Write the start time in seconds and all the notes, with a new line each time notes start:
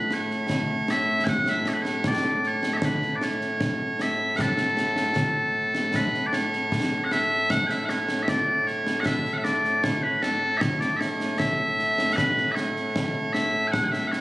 Already playing: A2 A3 B4
0.11 C#5, snare
0.31 snare
0.49 concert bass drum, snare
0.88 E5, snare
1.24 G#5, concert bass drum, snare
1.29 F#5
1.46 E5, snare
1.66 C#5, snare
1.73 B4
1.82 C#5, snare
2.04 D5, concert bass drum, snare
2.43 C#5, snare
2.63 snare
2.73 C#5 E5
2.82 B4, concert bass drum, snare
3.02 snare
3.15 D5
3.21 C#5, snare
3.41 snare
3.61 concert bass drum, snare
3.99 E5, snare
4.36 F#5, concert bass drum, snare
4.41 A4
4.57 snare
4.77 snare
4.96 snare
5.16 concert bass drum, snare
5.75 snare
5.94 B4, concert bass drum, snare
6.14 snare
6.26 D5
6.33 C#5, snare
6.53 snare
6.72 concert bass drum, snare
7.04 F#5
7.11 E5, snare
7.50 F#5, concert bass drum, snare
7.67 E5 G#5, snare
7.85 F#5, snare
7.89 C#5
8.08 snare
8.22 E5
8.28 D5, concert bass drum, snare
8.67 C#5, snare
8.87 snare
9.00 F#5
9.06 E5, concert bass drum, snare
9.25 snare
9.33 F#5
9.37 E5
9.44 D5, snare
9.64 snare
9.83 C#5, concert bass drum, snare
10.03 B4
10.22 A4, snare
10.57 C#5 E5, concert bass drum, snare
10.80 D5, snare
10.96 C#5 E5
11.01 snare
11.20 snare
11.38 E5, concert bass drum, snare
11.79 snare
11.98 snare
12.13 B4 F#5
12.18 concert bass drum, snare
12.38 snare
12.51 C#5 E5
12.57 snare
12.76 snare
12.96 concert bass drum, snare
13.33 E5, snare
13.68 G#5
13.72 F#5, concert bass drum, snare
13.84 G#5
13.88 E5 F#5
13.93 snare
14.07 F#5
14.11 C#5, snare